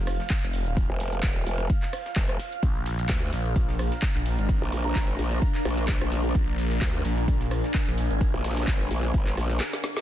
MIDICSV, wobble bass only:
0, 0, Header, 1, 2, 480
1, 0, Start_track
1, 0, Tempo, 465116
1, 793, Time_signature, 4, 2, 24, 8
1, 10331, End_track
2, 0, Start_track
2, 0, Title_t, "Wobble bass"
2, 0, Program_c, 0, 39
2, 925, Note_on_c, 0, 29, 96
2, 1255, Note_off_c, 0, 29, 0
2, 1273, Note_on_c, 0, 27, 102
2, 1496, Note_off_c, 0, 27, 0
2, 1512, Note_on_c, 0, 29, 98
2, 1736, Note_off_c, 0, 29, 0
2, 2233, Note_on_c, 0, 29, 101
2, 2456, Note_off_c, 0, 29, 0
2, 3193, Note_on_c, 0, 38, 103
2, 3416, Note_off_c, 0, 38, 0
2, 4768, Note_on_c, 0, 34, 94
2, 5097, Note_off_c, 0, 34, 0
2, 5114, Note_on_c, 0, 32, 105
2, 5336, Note_off_c, 0, 32, 0
2, 5355, Note_on_c, 0, 34, 102
2, 5577, Note_off_c, 0, 34, 0
2, 5834, Note_on_c, 0, 34, 103
2, 6185, Note_off_c, 0, 34, 0
2, 6207, Note_on_c, 0, 34, 100
2, 6537, Note_off_c, 0, 34, 0
2, 7033, Note_on_c, 0, 38, 102
2, 7256, Note_off_c, 0, 38, 0
2, 8607, Note_on_c, 0, 34, 94
2, 8936, Note_off_c, 0, 34, 0
2, 9194, Note_on_c, 0, 34, 99
2, 9416, Note_off_c, 0, 34, 0
2, 9433, Note_on_c, 0, 32, 97
2, 9656, Note_off_c, 0, 32, 0
2, 9674, Note_on_c, 0, 34, 102
2, 9914, Note_off_c, 0, 34, 0
2, 10331, End_track
0, 0, End_of_file